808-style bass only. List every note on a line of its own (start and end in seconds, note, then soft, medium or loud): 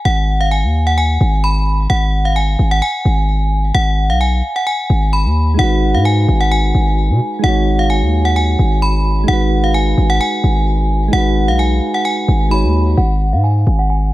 0.05 0.65 G#1 loud
0.64 1.18 D#2 loud
1.21 1.87 G#1 loud
1.90 2.56 G#1 loud
2.59 2.81 G#1 loud
3.05 3.72 G#1 loud
3.74 4.11 G#1 loud
4.10 4.42 B1 loud
4.90 5.27 G#1 loud
5.25 5.57 D#2 loud
5.59 5.96 G#1 loud
5.94 6.27 G#2 loud
6.28 6.73 G#1 loud
6.75 7.11 G#1 loud
7.10 7.20 B2 loud
7.44 8.04 G#1 loud
8.02 8.56 D#2 loud
8.59 9.26 G#1 loud
9.28 9.95 G#1 loud
9.98 10.20 G#1 loud
10.44 11.10 G#1 loud
11.13 11.50 G#1 loud
11.48 11.80 B1 loud
12.28 12.65 G#1 loud
12.64 12.96 D#2 loud
12.98 13.34 G#1 loud
13.33 13.65 G#2 loud
13.67 14.11 G#1 loud